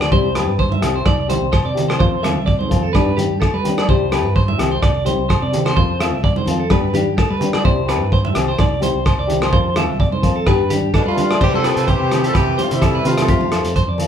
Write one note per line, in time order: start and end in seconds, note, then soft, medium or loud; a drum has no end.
0.01 0.11 D5 medium
0.01 cross-stick medium
0.01 low agogo medium
0.11 0.47 C2 medium
0.11 0.26 G3 medium
0.11 0.27 C4 medium
0.11 0.27 E4 medium
0.11 0.27 G4 medium
0.11 0.34 C5 medium
0.11 kick medium
0.34 0.51 C4 soft
0.34 0.51 E4 soft
0.34 0.50 G4 medium
0.34 0.58 B4 medium
0.34 cross-stick medium
0.34 closed hi-hat soft
0.34 low agogo medium
0.47 0.80 G2 medium
0.59 0.71 C5 medium
0.59 kick medium
0.72 0.94 E5 medium
0.72 high conga medium
0.81 1.05 C2 medium
0.81 0.98 C4 soft
0.81 0.97 E4 medium
0.81 0.96 G4 medium
0.81 cross-stick medium
0.81 closed hi-hat medium
0.81 low conga medium
0.81 low agogo medium
0.95 1.06 C5 medium
1.06 1.40 C2 medium
1.06 1.28 D5 medium
1.06 kick medium
1.06 cross-stick medium
1.06 high conga medium
1.06 low agogo medium
1.28 1.45 C4 soft
1.28 1.45 E4 soft
1.28 1.44 G4 medium
1.28 1.51 C5 medium
1.28 closed hi-hat soft
1.28 high conga medium
1.28 low conga medium
1.42 1.64 C2 medium
1.52 1.65 C5 medium
1.52 kick medium
1.52 cross-stick medium
1.52 low agogo medium
1.65 1.98 C3 medium
1.65 1.88 D5 medium
1.75 1.92 C4 soft
1.75 1.91 E4 medium
1.75 1.90 G4 medium
1.75 closed hi-hat soft
1.75 low conga medium
1.88 1.98 C5 medium
1.88 cross-stick medium
1.88 low agogo medium
1.98 2.37 F2 medium
1.98 2.14 F3 medium
1.98 2.14 C4 medium
1.98 2.15 F4 medium
1.98 2.15 A4 medium
1.98 2.22 C5 medium
1.98 kick medium
2.22 2.39 C4 soft
2.22 2.38 F4 medium
2.22 2.38 A4 medium
2.22 2.46 E5 medium
2.22 cross-stick medium
2.22 closed hi-hat medium
2.22 high conga medium
2.22 low conga medium
2.22 low agogo medium
2.37 2.69 C2 medium
2.46 2.58 D5 medium
2.46 kick medium
2.59 2.82 C5 medium
2.59 high conga medium
2.69 2.93 F2 medium
2.69 2.86 C4 soft
2.69 2.85 F4 soft
2.69 2.84 A4 medium
2.69 kick medium
2.69 closed hi-hat soft
2.69 low conga medium
2.69 low agogo medium
2.83 2.93 A4 medium
2.93 3.29 G2 loud
2.93 3.08 B3 medium
2.93 3.09 D4 medium
2.93 3.10 G4 medium
2.93 3.16 B4 medium
2.93 kick medium
2.93 cross-stick medium
2.93 high conga medium
2.93 low agogo medium
3.16 3.33 D4 soft
3.16 3.32 G4 medium
3.16 3.40 G4 medium
3.16 closed hi-hat soft
3.16 high conga medium
3.16 low conga medium
3.31 3.53 G2 medium
3.41 3.53 A4 medium
3.41 kick medium
3.41 cross-stick medium
3.41 low agogo medium
3.54 3.86 G3 medium
3.54 3.76 B4 medium
3.64 3.80 D4 soft
3.64 3.79 G4 medium
3.64 closed hi-hat soft
3.64 low conga medium
3.78 3.88 D5 medium
3.78 cross-stick medium
3.78 high conga medium
3.78 low agogo medium
3.88 4.25 C2 medium
3.88 4.03 G3 medium
3.88 4.04 E4 medium
3.88 4.04 G4 medium
3.88 4.11 C5 medium
3.88 muted nylon-string guitar stroke medium
3.88 kick medium
4.11 4.28 C4 soft
4.11 4.27 E4 soft
4.11 4.26 G4 medium
4.11 4.34 B4 medium
4.11 cross-stick medium
4.11 closed hi-hat soft
4.11 low agogo medium
4.25 4.57 G2 medium
4.36 4.48 C5 medium
4.36 kick medium
4.48 4.70 E5 medium
4.48 high conga medium
4.58 4.81 C2 medium
4.58 4.75 C4 soft
4.58 4.74 E4 medium
4.58 4.73 G4 medium
4.58 cross-stick medium
4.58 closed hi-hat soft
4.58 low conga medium
4.58 low agogo medium
4.71 4.82 C5 medium
4.82 5.17 C2 medium
4.82 5.05 D5 medium
4.82 kick medium
4.82 cross-stick medium
4.82 high conga medium
4.82 low agogo medium
5.05 5.22 C4 soft
5.05 5.21 E4 soft
5.05 5.20 G4 medium
5.05 5.28 C5 medium
5.05 closed hi-hat soft
5.05 high conga medium
5.05 low conga medium
5.18 5.41 C2 medium
5.29 5.41 C5 medium
5.29 kick medium
5.29 cross-stick medium
5.29 low agogo medium
5.42 5.75 C3 medium
5.42 5.65 D5 medium
5.53 5.69 C4 soft
5.53 5.68 G4 medium
5.53 closed hi-hat soft
5.53 low conga medium
5.65 5.75 C5 medium
5.65 cross-stick medium
5.65 low agogo medium
5.75 6.13 F2 loud
5.75 5.91 F3 medium
5.75 5.91 C4 medium
5.75 5.92 F4 medium
5.75 5.92 A4 medium
5.75 5.99 C5 medium
5.75 kick medium
5.99 6.16 C4 soft
5.99 6.15 F4 medium
5.99 6.15 A4 medium
5.99 6.23 E5 medium
5.99 cross-stick medium
5.99 closed hi-hat soft
5.99 low agogo medium
6.13 6.45 C2 medium
6.24 6.36 D5 medium
6.24 kick medium
6.36 6.59 C5 medium
6.36 high conga medium
6.46 6.69 F2 medium
6.46 6.63 C4 soft
6.46 6.62 F4 medium
6.46 6.62 A4 medium
6.46 closed hi-hat soft
6.46 low conga medium
6.46 low agogo medium
6.60 6.70 A4 medium
6.70 7.05 G2 medium
6.70 6.85 G3 medium
6.70 6.85 B3 medium
6.70 6.86 D4 medium
6.70 6.86 G4 medium
6.70 6.93 B4 medium
6.70 kick medium
6.70 cross-stick medium
6.70 high conga medium
6.70 low agogo medium
6.93 7.09 D4 soft
6.93 7.08 G4 medium
6.93 7.17 G4 medium
6.93 closed hi-hat soft
6.93 high conga medium
6.93 low conga medium
7.07 7.29 G2 medium
7.18 7.30 A4 medium
7.18 kick medium
7.18 cross-stick medium
7.18 low agogo medium
7.30 7.63 G3 medium
7.30 7.53 B4 medium
7.40 7.57 B3 soft
7.40 7.56 D4 soft
7.40 7.55 G4 medium
7.40 closed hi-hat soft
7.40 low conga medium
7.53 7.64 D5 medium
7.53 cross-stick medium
7.53 low agogo medium
7.63 8.01 C2 loud
7.63 7.79 G3 medium
7.63 7.79 C4 medium
7.63 7.79 E4 medium
7.63 7.80 G4 medium
7.63 7.87 C5 medium
7.63 kick medium
7.86 8.03 C4 soft
7.86 8.03 E4 medium
7.86 8.02 G4 medium
7.86 8.11 B4 medium
7.86 cross-stick medium
7.86 closed hi-hat soft
7.86 low agogo medium
8.01 8.34 G2 medium
8.12 8.24 C5 medium
8.12 kick medium
8.25 8.47 E5 medium
8.25 high conga medium
8.33 8.58 C2 medium
8.33 8.50 C4 soft
8.33 8.50 E4 medium
8.33 8.49 G4 medium
8.33 cross-stick medium
8.33 closed hi-hat soft
8.33 low conga medium
8.33 low agogo medium
8.48 8.59 C5 medium
8.59 8.93 C2 loud
8.59 8.82 D5 medium
8.59 kick medium
8.59 cross-stick medium
8.59 high conga medium
8.59 low agogo medium
8.81 8.98 C4 soft
8.81 8.97 E4 medium
8.81 8.96 G4 medium
8.81 9.05 C5 medium
8.81 closed hi-hat soft
8.81 high conga medium
8.81 low conga medium
8.95 9.17 C2 medium
9.06 9.18 C5 medium
9.06 kick medium
9.06 cross-stick medium
9.06 low agogo medium
9.18 9.51 C2 medium
9.18 9.41 D5 medium
9.27 9.45 C4 soft
9.27 9.44 E4 soft
9.27 9.43 G4 medium
9.27 closed hi-hat soft
9.27 low conga medium
9.42 9.52 C5 medium
9.42 cross-stick medium
9.42 low agogo medium
9.52 9.89 F2 medium
9.52 9.67 F3 medium
9.52 9.68 C4 medium
9.52 9.68 F4 medium
9.52 9.68 A4 medium
9.52 9.75 C5 medium
9.52 kick loud
9.74 9.92 C4 soft
9.74 9.91 F4 soft
9.74 9.90 A4 medium
9.74 9.99 E5 medium
9.74 cross-stick medium
9.74 closed hi-hat soft
9.74 high conga medium
9.74 low conga medium
9.74 low agogo medium
9.89 10.22 C2 medium
10.00 10.12 D5 medium
10.00 kick medium
10.12 10.35 C5 medium
10.12 high conga medium
10.22 10.46 F2 medium
10.22 10.39 C4 soft
10.22 10.38 F4 medium
10.22 10.38 A4 medium
10.22 kick medium
10.22 closed hi-hat soft
10.22 low agogo medium
10.36 10.46 A4 medium
10.45 10.81 G2 medium
10.45 10.61 B3 medium
10.45 10.62 G4 medium
10.45 10.69 B4 medium
10.45 muted nylon-string guitar stroke medium
10.45 kick medium
10.45 cross-stick medium
10.45 high conga medium
10.45 low agogo medium
10.70 10.86 D4 soft
10.70 10.85 G4 medium
10.70 10.93 G4 medium
10.70 closed hi-hat medium
10.70 high conga medium
10.70 low conga medium
10.82 11.05 G2 medium
10.94 11.07 B2 medium
10.94 11.07 G3 medium
10.94 11.07 D4 medium
10.94 11.06 A4 medium
10.94 kick medium
10.94 cross-stick medium
10.94 low agogo medium
11.05 11.45 D3 medium
11.05 11.39 G3 medium
11.05 11.39 A3 medium
11.05 11.39 F4 medium
11.05 11.29 B4 medium
11.16 11.33 D4 soft
11.16 11.32 G4 soft
11.16 closed hi-hat soft
11.16 low conga medium
11.30 11.41 D5 medium
11.30 cross-stick medium
11.30 low agogo medium
11.40 11.75 C3 medium
11.40 11.55 E3 medium
11.40 11.55 G3 medium
11.40 11.56 C4 medium
11.40 11.53 C4 medium
11.40 11.56 G4 medium
11.40 11.55 G4 loud
11.40 11.63 C5 medium
11.40 muted nylon-string guitar stroke medium
11.40 kick medium
11.40 crash medium
11.54 11.92 F3 medium
11.54 11.86 C4 medium
11.54 11.86 A4 medium
11.54 high conga medium
11.64 11.80 C4 soft
11.64 11.80 E4 soft
11.64 11.79 G4 soft
11.64 11.87 B4 medium
11.64 cross-stick medium
11.64 closed hi-hat soft
11.64 low agogo medium
11.76 11.99 C3 medium
11.76 closed hi-hat soft
11.87 12.28 E3 medium
11.87 12.23 C4 medium
11.87 12.25 G4 medium
11.87 11.98 C5 medium
11.87 kick medium
11.87 closed hi-hat soft
12.00 12.33 C3 medium
12.00 12.23 C5 medium
12.10 12.27 C4 soft
12.10 12.27 E4 soft
12.10 12.26 G4 soft
12.10 cross-stick medium
12.10 closed hi-hat soft
12.10 low conga medium
12.10 low agogo medium
12.24 12.36 F3 medium
12.24 12.34 C4 medium
12.24 12.34 G4 medium
12.24 12.36 A4 medium
12.24 closed hi-hat soft
12.34 12.57 C3 medium
12.34 12.62 C4 medium
12.34 12.63 G4 medium
12.34 12.57 B4 medium
12.34 kick medium
12.34 cross-stick medium
12.34 closed hi-hat soft
12.34 low agogo medium
12.38 12.63 E3 medium
12.58 12.75 C4 soft
12.58 12.74 E4 soft
12.58 12.73 G4 soft
12.58 12.81 C5 medium
12.58 closed hi-hat soft
12.58 high conga medium
12.63 12.76 D3 soft
12.63 12.71 F4 medium
12.71 13.04 C3 medium
12.71 13.08 C3 medium
12.71 13.06 G3 medium
12.71 13.07 E4 medium
12.71 closed hi-hat soft
12.71 low conga medium
12.81 12.94 A4 medium
12.81 kick medium
12.81 cross-stick medium
12.81 closed hi-hat medium
12.81 low agogo medium
12.95 13.17 B4 medium
13.05 13.28 C3 medium
13.05 13.74 C3 medium
13.05 13.73 A3 medium
13.05 13.21 C4 soft
13.05 13.21 E4 soft
13.05 13.73 F4 medium
13.05 13.20 G4 soft
13.05 closed hi-hat soft
13.05 low conga medium
13.17 13.29 A4 medium
13.17 cross-stick medium
13.17 closed hi-hat soft
13.17 high conga medium
13.17 low agogo medium
13.28 13.63 F2 medium
13.28 13.44 F3 medium
13.28 13.44 C4 medium
13.28 13.44 F4 medium
13.28 13.52 G4 medium
13.28 13.44 A4 medium
13.28 kick medium
13.28 closed hi-hat soft
13.41 high conga medium
13.51 13.68 C4 soft
13.51 13.67 F4 soft
13.51 13.67 A4 soft
13.51 13.75 A4 medium
13.51 cross-stick medium
13.51 closed hi-hat soft
13.51 low agogo medium
13.64 13.87 F2 medium
13.64 closed hi-hat medium
13.76 13.88 C5 medium
13.76 kick medium
13.76 closed hi-hat soft
13.88 14.07 F2 medium
13.88 14.07 D5 soft
13.98 14.07 C4 soft
13.98 14.07 F4 soft
13.98 14.07 A4 medium
13.98 closed hi-hat medium
13.98 low conga medium
13.98 low agogo medium